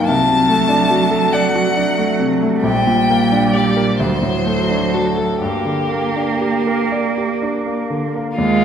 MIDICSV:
0, 0, Header, 1, 5, 480
1, 0, Start_track
1, 0, Key_signature, -2, "minor"
1, 0, Tempo, 840336
1, 46, Time_signature, 6, 3, 24, 8
1, 1006, Tempo, 887574
1, 1966, Tempo, 924499
1, 2446, Tempo, 985222
1, 3886, Tempo, 944882
1, 4511, End_track
2, 0, Start_track
2, 0, Title_t, "Violin"
2, 0, Program_c, 0, 40
2, 41, Note_on_c, 0, 81, 65
2, 758, Note_on_c, 0, 78, 51
2, 766, Note_off_c, 0, 81, 0
2, 1237, Note_off_c, 0, 78, 0
2, 1482, Note_on_c, 0, 79, 56
2, 1965, Note_on_c, 0, 74, 47
2, 1972, Note_off_c, 0, 79, 0
2, 2198, Note_off_c, 0, 74, 0
2, 2201, Note_on_c, 0, 72, 47
2, 2678, Note_on_c, 0, 69, 37
2, 2685, Note_off_c, 0, 72, 0
2, 2913, Note_off_c, 0, 69, 0
2, 2916, Note_on_c, 0, 67, 38
2, 3631, Note_off_c, 0, 67, 0
2, 4376, Note_on_c, 0, 70, 37
2, 4511, Note_off_c, 0, 70, 0
2, 4511, End_track
3, 0, Start_track
3, 0, Title_t, "Violin"
3, 0, Program_c, 1, 40
3, 4375, Note_on_c, 1, 65, 43
3, 4511, Note_off_c, 1, 65, 0
3, 4511, End_track
4, 0, Start_track
4, 0, Title_t, "Grand piano"
4, 0, Program_c, 2, 0
4, 0, Control_c, 2, 64, 127
4, 0, Note_on_c, 2, 43, 34
4, 0, Note_on_c, 2, 58, 33
4, 0, Note_on_c, 2, 63, 31
4, 0, Note_on_c, 2, 67, 34
4, 0, Note_on_c, 2, 70, 34
4, 0, Note_on_c, 2, 75, 38
4, 46, Note_on_c, 2, 36, 41
4, 56, Control_c, 2, 64, 0
4, 58, Note_off_c, 2, 75, 0
4, 59, Note_off_c, 2, 63, 0
4, 62, Note_off_c, 2, 43, 0
4, 62, Note_off_c, 2, 58, 0
4, 62, Note_off_c, 2, 67, 0
4, 62, Note_off_c, 2, 70, 0
4, 132, Control_c, 2, 64, 127
4, 163, Note_on_c, 2, 48, 29
4, 281, Note_on_c, 2, 57, 34
4, 353, Note_off_c, 2, 48, 0
4, 393, Note_on_c, 2, 62, 37
4, 471, Note_off_c, 2, 57, 0
4, 517, Note_on_c, 2, 66, 30
4, 589, Note_off_c, 2, 62, 0
4, 635, Note_on_c, 2, 69, 32
4, 712, Note_off_c, 2, 66, 0
4, 765, Note_on_c, 2, 74, 39
4, 832, Note_off_c, 2, 69, 0
4, 887, Note_on_c, 2, 66, 31
4, 959, Note_off_c, 2, 74, 0
4, 1009, Note_on_c, 2, 62, 28
4, 1077, Note_off_c, 2, 66, 0
4, 1125, Note_on_c, 2, 57, 31
4, 1194, Note_off_c, 2, 62, 0
4, 1240, Note_on_c, 2, 48, 27
4, 1312, Note_off_c, 2, 57, 0
4, 1365, Note_on_c, 2, 57, 31
4, 1431, Note_off_c, 2, 48, 0
4, 1457, Note_off_c, 2, 36, 0
4, 1478, Note_on_c, 2, 34, 37
4, 1483, Note_off_c, 2, 57, 0
4, 1490, Control_c, 2, 64, 0
4, 1569, Control_c, 2, 64, 127
4, 1605, Note_on_c, 2, 46, 28
4, 1728, Note_on_c, 2, 58, 29
4, 1798, Note_off_c, 2, 46, 0
4, 1848, Note_on_c, 2, 62, 31
4, 1920, Note_off_c, 2, 58, 0
4, 1968, Note_on_c, 2, 67, 32
4, 2038, Note_off_c, 2, 62, 0
4, 2085, Note_on_c, 2, 70, 26
4, 2155, Note_off_c, 2, 67, 0
4, 2181, Note_off_c, 2, 34, 0
4, 2203, Note_off_c, 2, 70, 0
4, 2204, Note_on_c, 2, 38, 35
4, 2213, Control_c, 2, 64, 0
4, 2313, Control_c, 2, 64, 127
4, 2322, Note_on_c, 2, 45, 24
4, 2446, Note_on_c, 2, 57, 25
4, 2516, Note_off_c, 2, 45, 0
4, 2563, Note_on_c, 2, 62, 26
4, 2634, Note_off_c, 2, 57, 0
4, 2681, Note_on_c, 2, 66, 23
4, 2752, Note_off_c, 2, 62, 0
4, 2792, Note_on_c, 2, 69, 25
4, 2870, Note_off_c, 2, 66, 0
4, 2900, Note_off_c, 2, 38, 0
4, 2911, Note_on_c, 2, 43, 31
4, 2915, Note_off_c, 2, 69, 0
4, 2927, Control_c, 2, 64, 0
4, 3027, Note_on_c, 2, 50, 23
4, 3028, Control_c, 2, 64, 127
4, 3145, Note_on_c, 2, 58, 24
4, 3226, Note_off_c, 2, 50, 0
4, 3275, Note_on_c, 2, 62, 24
4, 3347, Note_off_c, 2, 58, 0
4, 3398, Note_on_c, 2, 67, 23
4, 3474, Note_off_c, 2, 62, 0
4, 3523, Note_on_c, 2, 70, 26
4, 3596, Note_off_c, 2, 67, 0
4, 3644, Note_on_c, 2, 74, 28
4, 3718, Note_off_c, 2, 70, 0
4, 3769, Note_on_c, 2, 67, 23
4, 3837, Note_off_c, 2, 74, 0
4, 3888, Note_on_c, 2, 62, 23
4, 3963, Note_off_c, 2, 67, 0
4, 4010, Note_on_c, 2, 58, 19
4, 4088, Note_off_c, 2, 62, 0
4, 4132, Note_on_c, 2, 50, 23
4, 4212, Note_off_c, 2, 58, 0
4, 4262, Note_on_c, 2, 58, 22
4, 4328, Note_off_c, 2, 50, 0
4, 4352, Note_off_c, 2, 43, 0
4, 4376, Note_on_c, 2, 39, 36
4, 4377, Note_off_c, 2, 58, 0
4, 4386, Control_c, 2, 64, 0
4, 4457, Control_c, 2, 64, 127
4, 4511, Note_off_c, 2, 39, 0
4, 4511, End_track
5, 0, Start_track
5, 0, Title_t, "Cello"
5, 0, Program_c, 3, 42
5, 41, Note_on_c, 3, 54, 41
5, 1455, Note_off_c, 3, 54, 0
5, 1479, Note_on_c, 3, 55, 41
5, 2203, Note_on_c, 3, 54, 36
5, 2211, Note_off_c, 3, 55, 0
5, 2922, Note_on_c, 3, 58, 31
5, 2929, Note_off_c, 3, 54, 0
5, 4275, Note_off_c, 3, 58, 0
5, 4374, Note_on_c, 3, 56, 60
5, 4511, Note_off_c, 3, 56, 0
5, 4511, End_track
0, 0, End_of_file